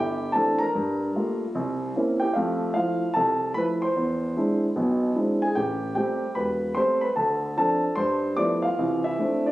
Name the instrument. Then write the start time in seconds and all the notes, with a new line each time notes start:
grand piano
Already playing: G1 G4 G5
0.32 E3 A3 C4 D4 A5
0.37 A4
0.58 A#4 A#5
0.75 G2
1.15 G3 A3 A#3 F4
1.55 C2
1.96 A#3 C4 C#4 E4
2.20 G4 G5
2.34 F2 A3 F4 F5
2.74 F3 A3 E4 F4 F5
3.14 C2 A4 A5
3.54 F3 A3 E4 B4 B5
3.82 C5 C6
3.96 E2
4.36 G#3 C4 D4 E4
4.76 B1 B2
5.15 G#3 C4 D4 E4
5.42 G#4 G#5
5.55 A1 G4 G5
5.95 G3 A3 C4 G4 G5
6.35 E1 B4 B5
6.75 G3 A3 C4 C5 C6
7.01 B4 B5
7.16 D2 A4 A5
7.56 F3 C4 D4 A4 A5
7.96 G2 C5 C6
8.36 F3 G3 A3 B3 E4 D5 D6
8.62 F4 F5
8.78 C2 E3
9.04 E4 E5
9.19 A3 C4 D4 E4
9.46 D4 D5